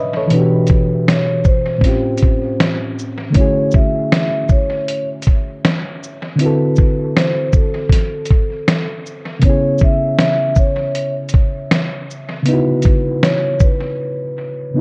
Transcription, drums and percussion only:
0.30 closed hi-hat
0.67 kick, closed hi-hat, shaker
1.08 snare, closed hi-hat
1.44 kick, shaker
1.81 kick, snare, closed hi-hat
2.17 closed hi-hat, shaker
2.23 kick
2.60 snare, closed hi-hat
2.99 shaker
3.34 kick, closed hi-hat
3.71 kick, shaker
4.12 snare, closed hi-hat
4.49 kick, shaker
4.88 closed hi-hat
5.22 closed hi-hat, shaker
5.27 kick
5.65 snare, closed hi-hat
6.03 shaker
6.39 closed hi-hat
6.76 kick, shaker
7.17 snare, closed hi-hat
7.53 kick, shaker
7.89 kick, snare, closed hi-hat
8.25 closed hi-hat, shaker
8.30 kick
8.68 snare, closed hi-hat
9.06 shaker
9.42 kick, closed hi-hat
9.78 kick, shaker
10.19 snare, closed hi-hat
10.55 kick, shaker
10.95 closed hi-hat
11.29 closed hi-hat, shaker
11.34 kick
11.71 snare, closed hi-hat
12.10 shaker
12.46 closed hi-hat
12.82 kick, closed hi-hat, shaker
13.23 snare, closed hi-hat
13.60 kick, shaker

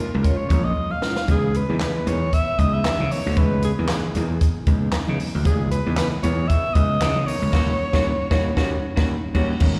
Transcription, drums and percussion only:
0.24 kick, closed hi-hat
0.50 kick, closed hi-hat, low conga
0.76 high conga
0.90 high conga
1.02 snare
1.16 snare
1.28 kick, closed hi-hat, muted conga
1.54 closed hi-hat
1.80 snare, clap, closed hi-hat, high conga
2.07 closed hi-hat, muted conga, low conga
2.33 kick, closed hi-hat
2.59 kick, closed hi-hat
2.84 snare, clap, closed hi-hat, high conga
3.00 high conga
3.11 open hi-hat, high conga
3.36 kick, closed hi-hat, muted conga
3.62 closed hi-hat, muted conga
3.88 snare, clap, closed hi-hat, high conga
4.15 closed hi-hat, muted conga, low conga
4.41 kick, closed hi-hat
4.66 kick, closed hi-hat, low conga
4.92 snare, clap, closed hi-hat, high conga
5.08 high conga
5.19 open hi-hat, high conga
5.45 kick, closed hi-hat, muted conga
5.71 closed hi-hat, muted conga
5.97 snare, clap, closed hi-hat, high conga
6.23 closed hi-hat, muted conga, low conga
6.50 kick, closed hi-hat
6.75 kick, closed hi-hat
7.01 snare, clap, closed hi-hat, high conga
7.16 high conga
7.26 open hi-hat, high conga
7.53 kick, snare, crash
7.93 kick, snare
8.31 kick, snare
8.57 kick, snare
8.97 kick, snare
9.35 kick, crash
9.60 kick, crash, muted conga

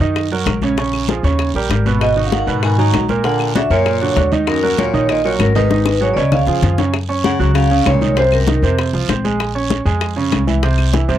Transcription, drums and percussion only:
0.00 high conga, short guiro
0.15 high bongo, high conga, long guiro, claves
0.31 high conga
0.46 high bongo, low bongo, high conga, short guiro, claves
0.62 high conga, short guiro
0.77 high bongo, high conga, long guiro
0.93 high bongo, high conga, claves
1.08 high bongo, high conga, short guiro
1.24 high bongo, high conga, short guiro
1.39 high bongo, high conga, long guiro, claves
1.55 high bongo, high conga
1.71 high bongo, low bongo, high conga, short guiro
1.86 high conga, short guiro
2.01 high bongo, long guiro, claves
2.17 high conga
2.32 high bongo, high conga, short guiro
2.48 high conga, short guiro
2.63 high bongo, high conga, long guiro, claves
2.79 high conga
2.94 high bongo, low bongo, high conga, short guiro, claves
3.08 high conga, short guiro
3.24 high bongo, high conga, long guiro
3.40 high bongo, high conga, claves
3.55 high bongo, high conga, short guiro
3.71 high bongo, high conga, short guiro
3.86 high bongo, high conga, long guiro, claves
4.01 high bongo, high conga
4.17 high bongo, low bongo, high conga, short guiro
4.32 high conga, short guiro
4.47 high bongo, high conga, long guiro, claves
4.63 high conga
4.78 high bongo, high conga, short guiro
4.94 high conga, short guiro
5.09 high bongo, high conga, long guiro, claves
5.25 high conga
5.40 high bongo, low bongo, high conga, short guiro, claves
5.55 high conga, short guiro
5.71 high bongo, high conga, long guiro
5.86 high bongo, claves
6.02 short guiro
6.17 short guiro
6.32 low bongo, low conga, long guiro, claves
6.47 low conga
6.62 low bongo, low conga, short guiro
6.78 low bongo, low conga, short guiro
6.93 high bongo, high conga, long guiro, claves
7.09 high conga
7.24 high bongo, high conga, short guiro
7.40 high conga, short guiro
7.55 high bongo, high conga, long guiro, claves
7.71 high conga
7.86 high bongo, low bongo, high conga, short guiro, claves
8.01 high conga, short guiro
8.17 high bongo, high conga, long guiro
8.32 high bongo, high conga, claves
8.47 high bongo, high conga, short guiro
8.63 high bongo, high conga, short guiro
8.78 high bongo, high conga, long guiro, claves
8.94 high bongo, high conga
9.09 high bongo, low bongo, high conga, short guiro
9.25 high conga, short guiro
9.40 high bongo, high conga, long guiro, claves
9.55 high conga
9.70 high bongo, high conga, short guiro
9.86 high conga, short guiro
10.01 high bongo, high conga, long guiro, claves
10.17 high conga
10.32 high bongo, low bongo, high conga, short guiro, claves
10.48 high conga, short guiro
10.63 high bongo, high conga, long guiro
10.78 high bongo, high conga, claves
10.93 high bongo, high conga, short guiro
11.09 high bongo, high conga, short guiro

